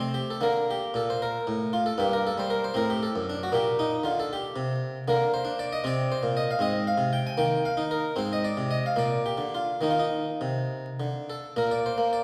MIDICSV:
0, 0, Header, 1, 2, 480
1, 0, Start_track
1, 0, Tempo, 521739
1, 379, Time_signature, 6, 3, 24, 8
1, 3254, Tempo, 510204
1, 6134, Tempo, 523560
1, 7574, Tempo, 546448
1, 8534, Tempo, 574713
1, 10454, Tempo, 546448
1, 11047, End_track
2, 0, Start_track
2, 0, Title_t, "Harpsichord"
2, 0, Program_c, 0, 6
2, 0, Note_on_c, 0, 57, 50
2, 0, Note_on_c, 0, 60, 62
2, 0, Note_on_c, 0, 72, 95
2, 131, Note_on_c, 0, 67, 96
2, 142, Note_off_c, 0, 72, 0
2, 255, Note_off_c, 0, 67, 0
2, 281, Note_on_c, 0, 69, 77
2, 294, Note_off_c, 0, 60, 0
2, 338, Note_off_c, 0, 57, 0
2, 376, Note_on_c, 0, 50, 69
2, 380, Note_on_c, 0, 58, 51
2, 391, Note_off_c, 0, 69, 0
2, 397, Note_on_c, 0, 70, 101
2, 632, Note_off_c, 0, 70, 0
2, 650, Note_on_c, 0, 67, 97
2, 765, Note_off_c, 0, 50, 0
2, 867, Note_on_c, 0, 46, 71
2, 877, Note_off_c, 0, 67, 0
2, 883, Note_on_c, 0, 69, 86
2, 993, Note_off_c, 0, 69, 0
2, 1013, Note_on_c, 0, 72, 93
2, 1118, Note_off_c, 0, 72, 0
2, 1124, Note_on_c, 0, 70, 105
2, 1249, Note_off_c, 0, 46, 0
2, 1354, Note_on_c, 0, 45, 70
2, 1592, Note_off_c, 0, 70, 0
2, 1593, Note_on_c, 0, 65, 94
2, 1706, Note_off_c, 0, 65, 0
2, 1711, Note_on_c, 0, 69, 100
2, 1731, Note_off_c, 0, 45, 0
2, 1783, Note_off_c, 0, 58, 0
2, 1820, Note_on_c, 0, 43, 78
2, 1824, Note_on_c, 0, 58, 51
2, 1825, Note_off_c, 0, 69, 0
2, 1837, Note_on_c, 0, 67, 107
2, 1947, Note_off_c, 0, 67, 0
2, 1962, Note_on_c, 0, 70, 102
2, 2069, Note_off_c, 0, 70, 0
2, 2086, Note_on_c, 0, 69, 114
2, 2106, Note_off_c, 0, 43, 0
2, 2185, Note_on_c, 0, 55, 74
2, 2191, Note_off_c, 0, 69, 0
2, 2204, Note_on_c, 0, 72, 105
2, 2303, Note_on_c, 0, 70, 116
2, 2310, Note_off_c, 0, 72, 0
2, 2420, Note_off_c, 0, 70, 0
2, 2433, Note_on_c, 0, 72, 100
2, 2469, Note_off_c, 0, 55, 0
2, 2502, Note_off_c, 0, 58, 0
2, 2522, Note_on_c, 0, 60, 58
2, 2530, Note_on_c, 0, 45, 78
2, 2544, Note_off_c, 0, 72, 0
2, 2546, Note_on_c, 0, 70, 117
2, 2660, Note_off_c, 0, 70, 0
2, 2668, Note_on_c, 0, 67, 95
2, 2781, Note_off_c, 0, 67, 0
2, 2785, Note_on_c, 0, 69, 100
2, 2819, Note_off_c, 0, 45, 0
2, 2902, Note_on_c, 0, 42, 74
2, 2984, Note_off_c, 0, 69, 0
2, 3031, Note_on_c, 0, 62, 98
2, 3142, Note_off_c, 0, 62, 0
2, 3157, Note_on_c, 0, 66, 102
2, 3186, Note_off_c, 0, 42, 0
2, 3209, Note_off_c, 0, 60, 0
2, 3241, Note_on_c, 0, 46, 80
2, 3243, Note_on_c, 0, 58, 57
2, 3260, Note_on_c, 0, 67, 114
2, 3265, Note_off_c, 0, 66, 0
2, 3463, Note_off_c, 0, 67, 0
2, 3493, Note_on_c, 0, 63, 106
2, 3633, Note_off_c, 0, 46, 0
2, 3724, Note_on_c, 0, 50, 75
2, 3735, Note_on_c, 0, 65, 94
2, 3737, Note_off_c, 0, 63, 0
2, 3857, Note_off_c, 0, 65, 0
2, 3875, Note_on_c, 0, 69, 96
2, 3987, Note_off_c, 0, 69, 0
2, 3999, Note_on_c, 0, 67, 105
2, 4115, Note_off_c, 0, 50, 0
2, 4214, Note_on_c, 0, 48, 74
2, 4470, Note_off_c, 0, 67, 0
2, 4600, Note_off_c, 0, 48, 0
2, 4656, Note_off_c, 0, 58, 0
2, 4702, Note_on_c, 0, 50, 83
2, 4704, Note_on_c, 0, 58, 54
2, 4718, Note_on_c, 0, 70, 112
2, 4913, Note_off_c, 0, 70, 0
2, 4947, Note_on_c, 0, 72, 111
2, 4988, Note_off_c, 0, 50, 0
2, 5050, Note_on_c, 0, 62, 75
2, 5182, Note_off_c, 0, 72, 0
2, 5188, Note_on_c, 0, 74, 112
2, 5302, Note_off_c, 0, 74, 0
2, 5313, Note_on_c, 0, 75, 98
2, 5340, Note_off_c, 0, 62, 0
2, 5381, Note_off_c, 0, 58, 0
2, 5421, Note_on_c, 0, 48, 79
2, 5424, Note_off_c, 0, 75, 0
2, 5425, Note_on_c, 0, 60, 58
2, 5447, Note_on_c, 0, 74, 111
2, 5669, Note_off_c, 0, 74, 0
2, 5682, Note_on_c, 0, 72, 102
2, 5705, Note_off_c, 0, 48, 0
2, 5786, Note_on_c, 0, 46, 69
2, 5873, Note_off_c, 0, 72, 0
2, 5917, Note_on_c, 0, 75, 105
2, 6024, Note_off_c, 0, 75, 0
2, 6049, Note_on_c, 0, 77, 102
2, 6067, Note_off_c, 0, 46, 0
2, 6099, Note_off_c, 0, 60, 0
2, 6128, Note_on_c, 0, 44, 75
2, 6138, Note_on_c, 0, 60, 54
2, 6150, Note_off_c, 0, 77, 0
2, 6151, Note_on_c, 0, 75, 105
2, 6343, Note_off_c, 0, 75, 0
2, 6386, Note_on_c, 0, 77, 105
2, 6414, Note_off_c, 0, 44, 0
2, 6480, Note_on_c, 0, 48, 66
2, 6616, Note_off_c, 0, 77, 0
2, 6619, Note_on_c, 0, 79, 109
2, 6733, Note_off_c, 0, 79, 0
2, 6746, Note_on_c, 0, 80, 89
2, 6770, Note_off_c, 0, 48, 0
2, 6813, Note_off_c, 0, 60, 0
2, 6846, Note_on_c, 0, 51, 70
2, 6846, Note_on_c, 0, 58, 53
2, 6856, Note_off_c, 0, 80, 0
2, 6858, Note_on_c, 0, 79, 104
2, 7093, Note_off_c, 0, 79, 0
2, 7102, Note_on_c, 0, 77, 95
2, 7135, Note_off_c, 0, 51, 0
2, 7211, Note_on_c, 0, 63, 63
2, 7300, Note_off_c, 0, 77, 0
2, 7338, Note_on_c, 0, 70, 89
2, 7501, Note_off_c, 0, 63, 0
2, 7535, Note_off_c, 0, 58, 0
2, 7565, Note_on_c, 0, 60, 47
2, 7572, Note_on_c, 0, 44, 66
2, 7576, Note_off_c, 0, 70, 0
2, 7588, Note_on_c, 0, 72, 99
2, 7698, Note_off_c, 0, 72, 0
2, 7713, Note_on_c, 0, 75, 86
2, 7816, Note_on_c, 0, 74, 94
2, 7820, Note_off_c, 0, 75, 0
2, 7857, Note_off_c, 0, 44, 0
2, 7928, Note_on_c, 0, 48, 58
2, 8046, Note_on_c, 0, 75, 90
2, 8052, Note_off_c, 0, 74, 0
2, 8167, Note_off_c, 0, 75, 0
2, 8181, Note_on_c, 0, 77, 77
2, 8216, Note_off_c, 0, 48, 0
2, 8250, Note_off_c, 0, 60, 0
2, 8270, Note_on_c, 0, 46, 58
2, 8271, Note_on_c, 0, 58, 43
2, 8290, Note_on_c, 0, 74, 88
2, 8295, Note_off_c, 0, 77, 0
2, 8496, Note_off_c, 0, 74, 0
2, 8530, Note_on_c, 0, 67, 73
2, 8569, Note_off_c, 0, 46, 0
2, 8629, Note_on_c, 0, 50, 46
2, 8768, Note_off_c, 0, 67, 0
2, 8771, Note_on_c, 0, 65, 62
2, 8926, Note_off_c, 0, 50, 0
2, 8969, Note_off_c, 0, 58, 0
2, 8976, Note_off_c, 0, 65, 0
2, 8990, Note_on_c, 0, 51, 49
2, 8999, Note_on_c, 0, 58, 37
2, 9009, Note_on_c, 0, 63, 64
2, 9071, Note_on_c, 0, 65, 52
2, 9074, Note_off_c, 0, 63, 0
2, 9137, Note_off_c, 0, 65, 0
2, 9145, Note_on_c, 0, 63, 63
2, 9388, Note_off_c, 0, 51, 0
2, 9493, Note_on_c, 0, 48, 53
2, 9878, Note_off_c, 0, 48, 0
2, 9983, Note_on_c, 0, 50, 46
2, 10220, Note_off_c, 0, 63, 0
2, 10234, Note_on_c, 0, 69, 65
2, 10361, Note_off_c, 0, 50, 0
2, 10413, Note_off_c, 0, 58, 0
2, 10427, Note_off_c, 0, 69, 0
2, 10458, Note_on_c, 0, 46, 54
2, 10459, Note_on_c, 0, 58, 38
2, 10473, Note_on_c, 0, 70, 68
2, 10583, Note_off_c, 0, 70, 0
2, 10589, Note_on_c, 0, 74, 73
2, 10702, Note_off_c, 0, 74, 0
2, 10718, Note_on_c, 0, 72, 80
2, 10746, Note_off_c, 0, 46, 0
2, 10810, Note_off_c, 0, 58, 0
2, 10820, Note_on_c, 0, 58, 51
2, 10946, Note_off_c, 0, 72, 0
2, 10953, Note_on_c, 0, 74, 77
2, 11047, Note_off_c, 0, 58, 0
2, 11047, Note_off_c, 0, 74, 0
2, 11047, End_track
0, 0, End_of_file